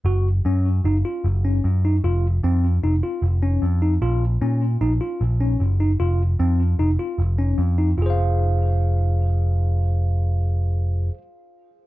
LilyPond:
<<
  \new Staff \with { instrumentName = "Tine electric piano" } { \time 5/4 \key f \phrygian \tempo 4 = 152 ges'4 des'4 ees'8 f'4 des'4 ees'8 | f'4 c'4 ees'8 f'4 des'4 ees'8 | f'4 des'4 ees'8 f'4 des'4 ees'8 | f'4 c'4 ees'8 f'4 des'4 ees'8 |
<f' aes' c'' f''>1~ <f' aes' c'' f''>4~ | <f' aes' c'' f''>1~ <f' aes' c'' f''>4 | }
  \new Staff \with { instrumentName = "Picked electric bass" } { \clef bass \time 5/4 \key f \phrygian ges,,4 ges,4 ges,,8 r8 ges,,4 ges,4 | f,,4 f,4 f,,8 r8 f,,4 f,4 | bes,,4 bes,4 bes,,8 r8 bes,,4 ges,,4 | f,,4 f,4 f,,8 r8 f,,4 f,4 |
f,,1~ f,,4~ | f,,1~ f,,4 | }
>>